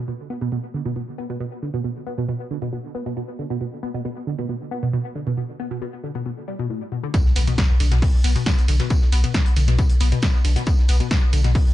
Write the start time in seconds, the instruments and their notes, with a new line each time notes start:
0.08 synth arpeggio sound B2
0.30 synth arpeggio sound B3
0.41 synth arpeggio sound B2
0.52 synth arpeggio sound B2
0.74 synth arpeggio sound D3
0.86 synth arpeggio sound B2
0.96 synth arpeggio sound B2
1.18 synth arpeggio sound B3
1.30 synth arpeggio sound B2
1.40 synth arpeggio sound B2
1.62 synth arpeggio sound D3
1.74 synth arpeggio sound B2
1.84 synth arpeggio sound B2
2.07 synth arpeggio sound B3
2.18 synth arpeggio sound B2
2.29 synth arpeggio sound B2
2.51 synth arpeggio sound D3
2.62 synth arpeggio sound B2
2.73 synth arpeggio sound B2
2.95 synth arpeggio sound B3
3.06 synth arpeggio sound B2
3.17 synth arpeggio sound B2
3.39 synth arpeggio sound D3
3.50 synth arpeggio sound B2
3.61 synth arpeggio sound B2
3.83 synth arpeggio sound B3
3.94 synth arpeggio sound B2
4.05 synth arpeggio sound B2
4.27 synth arpeggio sound D3
4.39 synth arpeggio sound B2
4.49 synth arpeggio sound B2
4.71 synth arpeggio sound B3
4.83 synth arpeggio sound B2
4.93 synth arpeggio sound B2
5.15 synth arpeggio sound D3
5.27 synth arpeggio sound B2
5.37 synth arpeggio sound B2
5.60 synth arpeggio sound B3
5.71 synth arpeggio sound B2
5.82 synth arpeggio sound B2
6.04 synth arpeggio sound D3
6.15 synth arpeggio sound B2
6.26 synth arpeggio sound B2
6.48 synth arpeggio sound G3
6.59 synth arpeggio sound B2
6.70 synth arpeggio sound A2
6.92 synth arpeggio sound B2
7.03 synth arpeggio sound D3
7.14 synth arpeggio sound B2, kick, closed hi-hat, tambourine, impact
7.25 sub bass B1, snare
7.36 sub bass B1, synth arpeggio sound B3, open hi-hat, ride, tambourine
7.47 synth arpeggio sound B2, closed hi-hat
7.58 synth arpeggio sound B2, kick, snare, closed hi-hat, tambourine
7.69 sub bass B1
7.80 sub bass B1, synth arpeggio sound D3, open hi-hat, ride, tambourine
7.91 sub bass B1, synth arpeggio sound B2, closed hi-hat
8.02 synth arpeggio sound B2, kick, closed hi-hat, open hi-hat
8.14 sub bass B1
8.24 sub bass B1, synth arpeggio sound B3, open hi-hat, ride, tambourine
8.36 synth arpeggio sound B2, snare, closed hi-hat
8.46 synth arpeggio sound B2, kick, snare, closed hi-hat, tambourine
8.58 sub bass B1, closed hi-hat
8.68 sub bass B1, synth arpeggio sound D3, open hi-hat, ride, tambourine
8.80 synth arpeggio sound B2, snare, closed hi-hat
8.90 synth arpeggio sound B2, kick, closed hi-hat, tambourine
9.02 sub bass B1, snare
9.12 sub bass B1, synth arpeggio sound B3, open hi-hat, ride, tambourine
9.24 synth arpeggio sound B2, closed hi-hat
9.34 synth arpeggio sound B2, kick, snare, closed hi-hat, tambourine
9.46 sub bass B1, closed hi-hat
9.56 sub bass B1, synth arpeggio sound D3, snare, open hi-hat, ride, tambourine
9.68 sub bass B1, synth arpeggio sound B2, snare, closed hi-hat
9.78 synth arpeggio sound B2, kick, closed hi-hat, tambourine
9.89 sub bass B1, closed hi-hat
10.00 sub bass B1, synth arpeggio sound B3, open hi-hat, ride, tambourine
10.12 synth arpeggio sound B2, closed hi-hat
10.22 synth arpeggio sound B2, kick, snare, closed hi-hat, tambourine
10.34 sub bass B1, snare
10.45 sub bass B1, synth arpeggio sound D3, open hi-hat, ride, tambourine
10.56 synth arpeggio sound B2, closed hi-hat
10.66 synth arpeggio sound B2, kick, closed hi-hat, tambourine
10.78 sub bass B1, snare
10.88 sub bass B1, synth arpeggio sound B3, open hi-hat, ride, tambourine
11.00 synth arpeggio sound B2, closed hi-hat
11.11 synth arpeggio sound B2, kick, snare, closed hi-hat, tambourine
11.22 sub bass B1
11.33 sub bass B1, synth arpeggio sound D3, open hi-hat, ride, tambourine
11.44 sub bass B1, synth arpeggio sound B2, closed hi-hat
11.55 synth arpeggio sound B2, kick, closed hi-hat, open hi-hat
11.66 sub bass B1